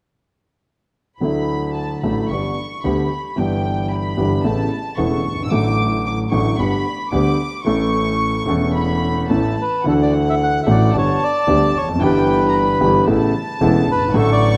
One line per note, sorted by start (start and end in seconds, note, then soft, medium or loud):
1.21 1.99 D2 medium
1.21 1.99 D2 soft
1.21 1.99 D3 medium
1.21 1.99 F#3 soft
1.21 2.00 A3 soft
1.21 2.00 E4 soft
1.21 1.72 B5 medium
1.75 2.03 A5 soft
2.02 2.26 A1 medium
2.02 2.26 A1 soft
2.02 2.26 A2 medium
2.02 2.26 D3 soft
2.02 2.26 F#3 soft
2.02 2.26 A3 soft
2.02 2.26 E4 soft
2.02 2.28 B5 soft
2.30 2.53 G1 medium
2.30 2.53 G1 soft
2.30 2.53 G2 soft
2.30 2.53 D3 soft
2.30 2.53 G3 soft
2.30 2.53 B3 soft
2.30 2.53 G4 soft
2.30 2.84 C#6 medium
2.84 3.07 D2 soft
2.84 3.07 D2 medium
2.84 3.07 D3 medium
2.84 3.07 G3 soft
2.84 3.07 B3 soft
2.84 3.07 G4 soft
2.84 3.38 B5 medium
3.36 4.14 G1 soft
3.36 4.14 G1 medium
3.36 4.14 G2 medium
3.36 4.13 E3 soft
3.36 4.14 G3 soft
3.36 4.15 B3 soft
3.36 4.15 G4 soft
3.36 3.91 G5 medium
3.91 4.45 B5 medium
4.17 4.40 G1 medium
4.17 4.41 G1 medium
4.17 4.40 G2 soft
4.17 4.40 E3 soft
4.17 4.40 G3 soft
4.17 4.40 B3 soft
4.17 4.41 G4 soft
4.44 4.67 A1 medium
4.44 4.67 A2 medium
4.44 4.67 C#3 soft
4.44 4.67 A3 soft
4.44 4.67 B3 soft
4.44 4.67 E4 soft
4.44 4.98 A5 medium
4.97 5.21 E1 soft
4.97 5.21 E1 medium
4.97 5.21 E2 medium
4.97 5.20 C#3 soft
4.97 5.20 A3 soft
4.97 5.21 B3 soft
4.97 5.21 E4 medium
4.97 5.45 C#6 medium
5.26 5.51 G1 soft
5.32 5.38 F#1 soft
5.38 5.45 G1 soft
5.44 5.52 G#1 soft
5.44 5.52 E6 medium
5.50 6.28 A1 medium
5.50 6.28 A2 medium
5.50 6.27 D3 soft
5.50 6.28 F#3 soft
5.50 6.28 A3 soft
5.50 6.05 D6 medium
5.54 6.29 F#4 medium
6.06 6.18 D6 medium
6.31 6.54 A1 medium
6.31 6.55 A2 medium
6.31 6.54 D3 soft
6.31 6.55 F#3 soft
6.31 6.55 A3 soft
6.31 6.55 F#4 medium
6.31 6.57 C#6 medium
6.58 6.81 G1 medium
6.58 6.81 G1 soft
6.58 6.81 G2 medium
6.58 6.81 D3 soft
6.58 6.81 G3 soft
6.58 6.82 B3 soft
6.58 6.82 G4 soft
6.58 7.13 B5 medium
7.12 7.35 D2 medium
7.12 7.35 D3 medium
7.12 7.35 G3 soft
7.12 7.35 B3 medium
7.12 7.35 G4 medium
7.12 7.63 D6 medium
7.65 8.44 A1 medium
7.65 8.44 A2 medium
7.65 8.43 E3 medium
7.65 8.44 A3 medium
7.65 8.44 C#4 soft
7.65 8.45 A4 medium
7.65 8.75 C#6 medium
8.46 9.26 E1 medium
8.46 9.26 E2 medium
8.46 9.25 E3 medium
8.46 9.26 A3 soft
8.46 9.27 C#4 medium
8.50 9.27 A4 medium
8.75 9.27 B5 medium
9.30 9.54 A1 medium
9.30 9.54 A2 medium
9.30 9.53 E3 soft
9.30 9.54 A3 soft
9.30 9.54 C#4 soft
9.30 9.54 A4 medium
9.30 9.86 A5 medium
9.62 9.86 B4 medium
9.84 10.63 D2 medium
9.84 10.63 D3 medium
9.84 10.62 E3 medium
9.84 10.63 A3 medium
9.84 10.63 D4 soft
9.84 10.64 F#4 medium
9.84 10.90 F#5 medium
9.88 9.94 A4 medium
10.02 10.14 D5 medium
10.30 10.35 E5 medium
10.43 10.61 F#5 medium
10.63 10.90 A1 medium
10.63 10.90 A2 medium
10.63 10.90 E3 medium
10.63 10.90 A3 soft
10.63 10.90 D4 soft
10.63 10.90 F#4 medium
10.63 10.69 E5 soft
10.71 10.97 D5 medium
10.93 11.17 G1 medium
10.93 11.17 G2 medium
10.93 11.17 D3 soft
10.93 11.17 G3 soft
10.93 11.17 B3 soft
10.93 11.17 G4 medium
10.93 12.01 A5 medium
10.98 11.24 C#5 medium
11.24 11.78 D5 medium
11.47 11.70 D2 medium
11.47 11.71 D3 medium
11.47 11.70 G3 soft
11.47 11.71 B3 soft
11.47 11.71 G4 medium
11.75 12.01 F1 soft
11.75 11.89 C#5 medium
11.82 11.89 E2 soft
11.88 11.95 F2 soft
11.95 12.02 F#2 medium
11.95 12.77 E3 medium
12.00 12.77 G1 medium
12.00 12.78 G1 medium
12.00 12.77 G2 medium
12.00 12.77 G3 soft
12.00 12.78 B3 medium
12.00 12.79 G4 medium
12.00 13.06 B4 medium
12.00 12.48 G5 medium
12.48 12.55 A#5 soft
12.55 13.09 B5 medium
12.81 13.04 G1 medium
12.81 13.04 G2 medium
12.81 13.04 E3 medium
12.81 13.04 G3 medium
12.81 13.04 B3 medium
12.81 13.04 G4 medium
13.07 13.30 A1 medium
13.07 13.31 A1 medium
13.07 13.31 A2 medium
13.07 13.30 C#3 medium
13.07 13.31 A3 soft
13.07 13.31 B3 medium
13.07 13.31 E4 medium
13.07 14.11 A5 medium
13.60 13.84 E1 medium
13.60 13.84 E2 medium
13.60 13.84 C#3 medium
13.60 13.84 A3 soft
13.60 13.84 B3 medium
13.60 13.84 E4 medium
13.88 14.14 G1 medium
13.88 14.17 B4 medium
13.95 14.02 F#1 soft
14.01 14.08 G1 soft
14.08 14.15 G#1 medium
14.12 14.57 A1 medium
14.12 14.57 A2 medium
14.12 14.57 D3 medium
14.12 14.57 F#3 medium
14.12 14.57 A3 soft
14.12 14.57 F#4 medium
14.12 14.57 C#6 medium
14.19 14.31 A4 medium
14.32 14.57 D5 medium